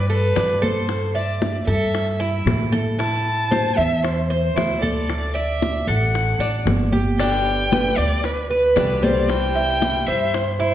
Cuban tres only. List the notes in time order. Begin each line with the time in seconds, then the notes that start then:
0.10 A4
0.36 D4
0.62 A4
1.15 E5
1.67 A4
2.20 E4
2.72 A4
2.99 E4
3.51 C5
3.77 E5
4.30 C5
4.56 E4
4.82 A4
5.35 D5
5.88 A4
6.40 D4
6.92 G4
7.20 D4
7.72 B4
7.98 D5
8.50 B4
8.76 D4
9.03 C5
9.55 E5
10.08 C5
10.60 E4